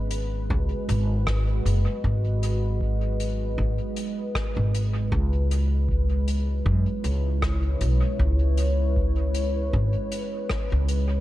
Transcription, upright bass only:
Already playing: G#1
0.50 C#2
0.89 G#1
1.65 F#1
2.04 G#1
3.58 G#2
4.57 G#1
5.12 C#2
6.66 F#2
7.04 C#2
7.81 B1
8.19 C#2
9.73 G#1
10.72 C#2

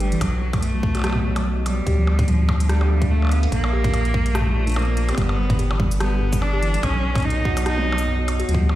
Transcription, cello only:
0.00 G3
0.21 F#3
0.63 A3
1.66 G3
2.28 F3
2.69 G3
3.11 A3
3.31 B3
3.52 A#3
4.35 A3
4.76 A#3
5.12 C4
5.18 B3
6.00 B3
6.42 D4
6.83 C#4
7.24 D#4
7.66 D#4
8.49 F3
8.69 F3

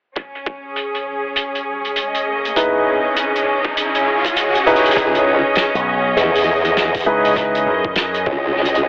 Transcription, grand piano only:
2.56 D#4 E4 G#4 B4
4.66 D#4 E4 G#4 B4
4.96 D#4 E4 G#4 B4
7.06 D#4 E4 G#4 B4
7.36 D#4 E4 G#4 B4

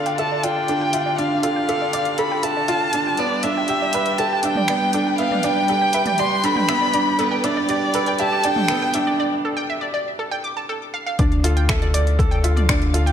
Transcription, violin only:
Already playing: F5
0.18 A5
0.43 G5
1.18 F5
1.43 F5
2.18 B5
2.43 A5
3.19 D5
3.43 E5
4.18 A5
4.44 G5
5.18 F5
5.44 G5
6.19 C6
6.44 B5
7.20 B4
7.44 D5
8.19 A5
8.44 G5

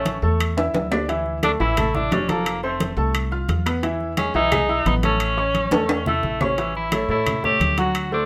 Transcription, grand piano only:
Already playing: C#4 C#5 C#6
0.23 A3 A4 A5
0.57 E4 E5 E6
0.91 D4 D5 D6
1.09 E3 E4 E5
1.43 A3 A4 A5
1.60 E3 E4 E5
1.77 A3 A4 A5
1.95 E4 E5 E6
2.12 D4 D5 D6
2.29 F3 A4 A5
2.63 C4 C5 C6
2.97 A3 A4 A5
3.32 F4 F5 F6
3.66 B3 B4 B5
3.83 E3 E4 E5
4.18 G#3 G#4 G#5
4.35 E3 E4 E5
4.51 G#3 G#4 G#5
4.69 E4 E5 E6
4.86 B3 B4 B5
5.03 A3 A4 A5
5.37 C#4 C#5 C#6
5.72 A3 A4 A5
6.07 E4 E5 E6
6.41 C#4 C#5 C#6
6.58 E3 E4 E5
6.92 A3 A4 C#5
7.10 A3 A4 C#5
7.43 A3 A4 C#5
7.78 F#3 F#4 F#5
8.12 A3 A4 C5

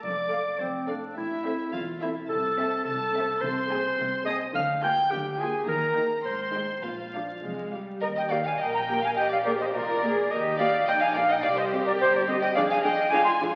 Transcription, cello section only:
0.04 F2
0.60 F2
1.17 A2
1.73 E2
2.31 C3
2.87 C3
3.43 C3
3.99 C3
4.56 D3
5.12 D3
5.68 D#3
6.26 G#2
6.85 A#2
7.44 F2
8.61 A#4
9.18 G4
9.75 F4
10.03 G#4
10.31 G4
10.88 D#4
11.43 G4
12.55 G#4
13.12 F4

